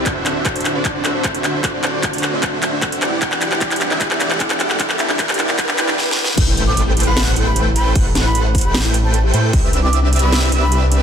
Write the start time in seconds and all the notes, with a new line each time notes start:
Already playing: D3 C4, riser
0.06 D1 D3 F#3 A3 D4 F#4 C5 E5, kick, clap, closed hi-hat
0.16 F#4
0.26 D4, clap, closed hi-hat
0.36 D4
0.45 A4, kick, clap, closed hi-hat
0.55 C5, closed hi-hat
0.60 closed hi-hat
0.65 D4, clap, closed hi-hat
0.75 D1 D3 D4 F#4 C5 D5
0.85 kick, clap, closed hi-hat
0.95 D4
1.05 D1 D3 D4 F#4 A4 C5 E5, clap, closed hi-hat
1.15 C5
1.24 D4, kick, clap, closed hi-hat
1.34 F#4, closed hi-hat
1.44 D4, clap, closed hi-hat
1.54 D4
1.64 D1 D3 D4 F#4 A4 C5 D5, kick, clap, closed hi-hat
1.74 C5
1.84 D4, clap, closed hi-hat
1.94 F#4
2.03 D4, kick, clap, closed hi-hat
2.13 D4, closed hi-hat
2.18 closed hi-hat
2.23 A4, clap, closed hi-hat
2.33 D1 D3 D4 F#4 C5 E5
2.43 D4, kick, clap, closed hi-hat
2.53 F#4
2.63 D4, clap, closed hi-hat
2.73 D4
2.82 A4, kick, clap, closed hi-hat
2.92 C5, closed hi-hat
3.02 E1 E3 G3 B3 D4 E4 G4 D5 F#5, clap, closed hi-hat
3.12 E4
3.22 E1 E3 D4 E4 G4 D5 F#5, kick, clap, closed hi-hat
3.32 D4, clap
3.42 F#4, clap, closed hi-hat
3.52 G4, clap
3.61 D4, kick, clap, closed hi-hat
3.71 E4, clap, closed hi-hat
3.76 closed hi-hat
3.81 D4, clap, closed hi-hat
3.91 E1 E3 D4 E4 G4 D5 E5, clap
4.01 F#4, kick, clap, closed hi-hat
4.11 G4, clap
4.20 E1 E3 D4 E4 G4 D5 F#5, clap, closed hi-hat
4.31 E4, clap
4.40 D4, kick, clap, closed hi-hat
4.50 D4, clap, closed hi-hat
4.60 F#4, clap, closed hi-hat
4.70 G4, clap
4.80 E1 E3 D4 E4 G4 D5 E5, kick, clap, closed hi-hat
4.90 E4, clap
4.99 D4, clap, closed hi-hat
5.09 D4, clap
5.19 kick, clap, closed hi-hat
5.29 G4, clap, closed hi-hat
5.34 closed hi-hat
5.39 D4, clap, closed hi-hat
5.49 E1 E3 E4 G4 D5 F#5, clap
5.58 D4, kick, clap, closed hi-hat
5.69 D4, clap
5.78 E1 E3 E4 G4 D5 G5, clap, closed hi-hat
5.88 D4, clap
5.98 snare
6.11 snare
6.24 snare
6.37 A1 A3 E4 A4 B4 C5 G5 G6, kick, closed hi-hat, crash, impact
6.48 E4
6.57 A4, closed hi-hat
6.67 C5 D6
6.77 E4, closed hi-hat
6.87 G4
6.97 E4, closed hi-hat
7.00 closed hi-hat
7.03 A1 A3 E4 A4 B4 C5 F#5 B5 F#6, closed hi-hat
7.17 snare, closed hi-hat, crash
7.27 C5
7.36 A1 A3 E4 A4 B4 C5 G5 G6, closed hi-hat
7.47 G4 B5
7.56 E4, closed hi-hat
7.66 E4
7.76 A4 B5, closed hi-hat
7.86 C5
7.95 A1 A3 A4 B4 C5 F#5 F#6, kick, closed hi-hat, crash
8.06 G4
8.15 E4, snare, closed hi-hat
8.25 E4 B5
8.35 A4, closed hi-hat
8.45 C5
8.55 E4, kick, closed hi-hat
8.58 closed hi-hat
8.61 A1 A3 G4 A4 B4 C5 G5 B5 G6, closed hi-hat
8.74 E4, snare, closed hi-hat, crash
8.85 E4
8.94 A4, closed hi-hat
9.04 C5 A5
9.14 E4 A5, closed hi-hat
9.24 G4
9.34 A2 A3 E4 A4 B4 C5 G5 G6, closed hi-hat
9.44 E4
9.53 C2 C4 G4 B4 D5 E5 E6, kick, closed hi-hat, crash
9.64 B4
9.73 D4, closed hi-hat
9.83 E4 D6
9.93 D4, closed hi-hat
10.03 D4
10.13 G4, closed hi-hat
10.16 closed hi-hat
10.19 C2 C4 G4 B4 D5 E5 B5 E6, closed hi-hat
10.32 D4, snare, closed hi-hat, crash
10.43 E4
10.52 C2 C4 D4 G4 B4 D5 E5 E6, closed hi-hat
10.62 D4 B5
10.72 G4, closed hi-hat
10.82 B4
10.92 D4, closed hi-hat